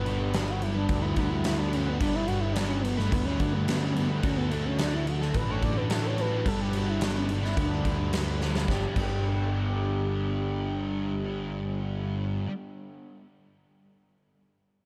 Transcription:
Already playing: G1 B3 D4
0.04 G2 D3 G3 B3 D4 B4, crash
0.32 G2 D3 G3 B3 D4 B4, snare, crash
0.49 F#4
0.61 G2 D3 G3 E4, muted overdriven electric guitar stroke, crash
0.74 B3 D4 B4, muted distorted electric guitar stroke
0.89 D2 D4, kick, crash
1.02 D3 G3 B3 D4 E4 B4
1.16 D2 G2 D3 G3 B3 D4 B4, kick, crash
1.29 E4, muted distorted electric guitar stroke
1.43 G2 D3 G3 B3 D4 E4 B4, snare, crash
1.58 B3 D4 B4
1.72 G2 D3 G3 B3 C#4 D4 B4, crash
1.86 D3 G3 B3 D4 B4
1.99 G1 G2 D3 G3 B3 D4 B4, kick, crash
2.14 B3 D4 E4 B4
2.27 G2 D3 G3 B3 D4 F#4, crash
2.31 B4
2.40 E4
2.53 G2 D3 G3 D4, snare, crash
2.57 G3 B3 D4 B4
2.68 C#4
2.82 G2 D3 G3 B3, muted overdriven electric guitar stroke, crash
2.97 A3 B3 D4 B4, muted distorted electric guitar stroke, snare
3.12 D2 B3, kick, crash
3.26 D3 G3 B3 C#4 D4 B4
3.39 D2 G2 D3 G3 B3 D4 B4, kick, crash
3.53 A3, muted distorted electric guitar stroke
3.66 G2 D3 G3 B3 D4 B4, snare, crash
3.80 B3 C#4 D4 B4
3.94 G2 D3 G3 B3 D4 B4, crash
4.08 D3 G3 A3 B3 D4 B4
4.21 D2 D3 A3 C#4 D4 F#4 A4, kick, crash
4.37 B3 D4 F#4 A4
4.49 D3 A3 D4 F#4, crash
4.53 A4
4.65 C#4
4.77 D3 A3 D4 F#4, snare, crash
4.81 A4
4.93 E4
5.06 D3 A3 D4 F#4, muted overdriven electric guitar stroke, crash
5.21 D4 F#4 A4, muted distorted electric guitar stroke, snare
5.34 A1 B4, kick, crash
5.48 A3 D4 F#4 A4 C#5
5.53 D4
5.61 A1 D3 A3 D4 F#4 A4 D5, kick, crash
5.76 B4, muted distorted electric guitar stroke
5.89 D3 A3 D4 F#4 A4, snare, crash
6.04 D4 F#4 A4 C#5
6.17 D3 A3 D4 F#4 B4, crash
6.21 A4
6.30 A3 D4 F#4 A4 B4
6.35 D4
6.44 G1 G2 D3 G3 B3 D4 A4, kick, crash
6.48 B4
6.61 B3 D4 G4 B4
6.73 G2 D3 G3, crash
6.77 B3 D4 F#4 B4
6.89 E4
7.00 G2 D3 G3 B3 D4, snare, crash
7.04 B4
7.17 C#4
7.28 G2 D3 G3 D4, muted overdriven electric guitar stroke, crash
7.43 B3 D4 E4 B4, muted distorted electric guitar stroke, snare
7.57 D2 D4, kick, crash
7.71 D3 G3 B3 D4 B4
7.84 D2 G2 D3 G3 B3 D4 B4, kick, crash
7.99 muted distorted electric guitar stroke
8.13 G2 D3 G3 B3 D4 B4, snare, crash
8.27 B3 D4 B4
8.41 G2 D3 G3 B3 D4 B4, snare
8.54 D3 G3 B3 D4 B4, snare
8.68 G1 G2 D3 G3 B3 D4 G4, kick, snare
8.72 G3 G4
8.95 G1 G2 D3 G3 B3 G4, kick, crash
8.99 G3 D4 G4

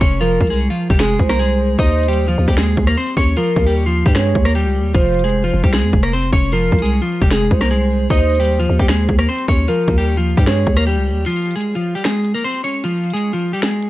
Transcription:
0.01 F1 C#4 C#5, kick, closed hi-hat
0.20 F3 F4 A#4, closed hi-hat
0.41 C2, kick, closed hi-hat, open hi-hat
0.47 G#3 G#4, closed hi-hat
0.54 closed hi-hat
0.70 F3 F4
0.90 F1 G3 G4, kick
0.99 G#3 G#4, finger snap, snare, closed hi-hat
1.19 C2 C5, kick, closed hi-hat
1.29 A#3 A#4, cross-stick, snare, closed hi-hat
1.39 G#3 G#4, closed hi-hat
1.79 D#2 D#4 C5 D#5, kick, closed hi-hat
1.98 closed hi-hat
2.03 closed hi-hat
2.08 G3 G4, closed hi-hat
2.13 closed hi-hat
2.28 F3 F4
2.38 D#2
2.48 D#2 G3 G4, kick
2.57 G#3 G#4, finger snap, snare, closed hi-hat
2.77 D#2, kick, closed hi-hat
2.87 A#3 A#4, cross-stick
2.97 C4 C5, closed hi-hat
3.07 closed hi-hat
3.17 D#2 C#4 C#5, kick, closed hi-hat
3.37 F3 F4 A#4, closed hi-hat
3.56 D#2, kick, open hi-hat
3.66 G3 G4
3.86 F3 F4
4.06 G2 G3 G4, kick
4.15 G#3 G#4 C#5, finger snap, cross-stick, snare, closed hi-hat
4.35 D#2, kick, closed hi-hat
4.45 A#3 A#4, cross-stick
4.55 G3 G4, closed hi-hat
4.65 C#2
4.80 D#2
4.94 F1 F3 F4 C5, kick, closed hi-hat
5.14 closed hi-hat
5.19 closed hi-hat
5.24 G#3 G#4, closed hi-hat
5.29 closed hi-hat
5.44 F3 F4
5.54 F1
5.64 C2 G3 G4, kick
5.73 G#3 G#4, finger snap, snare, closed hi-hat
5.83 F2
5.93 F1, kick, closed hi-hat
6.03 A#3 A#4, cross-stick
6.13 C4 C5, closed hi-hat
6.23 closed hi-hat
6.33 F1 C#4 C#5, kick, closed hi-hat
6.52 F3 F4 A#4, closed hi-hat
6.72 C2, kick, closed hi-hat, open hi-hat
6.79 G#4, closed hi-hat
6.83 G#3, closed hi-hat
7.02 F3 F4
7.22 F1 G3 G4, kick
7.31 G#3 G#4, finger snap, snare, closed hi-hat
7.51 C2 C5, kick, closed hi-hat
7.61 A#3 A#4, cross-stick, snare, closed hi-hat
7.71 G#3 G#4, closed hi-hat
8.10 D#2 D#4 C5 D#5, kick, closed hi-hat
8.30 closed hi-hat
8.35 closed hi-hat
8.40 G3 G4, closed hi-hat
8.45 closed hi-hat
8.60 F3 F4
8.69 D#2
8.79 D#2 G3 G4, kick
8.88 G#3 G#4, finger snap, snare, closed hi-hat
9.09 D#2, kick, closed hi-hat
9.19 A#3 A#4, cross-stick
9.29 C4 C5, closed hi-hat
9.39 closed hi-hat
9.48 D#2 C#4 C#5, kick, closed hi-hat
9.68 F3 F4 A#4, closed hi-hat
9.88 D#2, kick, open hi-hat
9.98 G3 G4
10.17 F3 F4
10.37 G2 G3 G4, kick
10.46 G#3 G#4 C#5, finger snap, cross-stick, snare, closed hi-hat
10.67 D#2, kick, closed hi-hat
10.77 A#3 A#4, cross-stick
10.87 G3 G4, closed hi-hat
10.96 C#2
11.11 D#2
11.26 F3 F4, closed hi-hat
11.46 closed hi-hat
11.51 closed hi-hat
11.56 G#3 G#4, closed hi-hat
11.61 closed hi-hat
11.75 F3 F4
11.95 G3 G4
12.04 G#3 G#4, finger snap, snare, closed hi-hat
12.25 closed hi-hat
12.34 A#3 A#4
12.44 C4 C5, closed hi-hat
12.54 closed hi-hat
12.64 C#4 C#5, closed hi-hat
12.84 F3 F4, closed hi-hat
13.04 closed hi-hat, open hi-hat
13.10 G#4, closed hi-hat
13.14 G#3, closed hi-hat
13.33 F3 F4
13.53 G3 G4
13.62 G#3 G#4, finger snap, snare, closed hi-hat
13.83 closed hi-hat

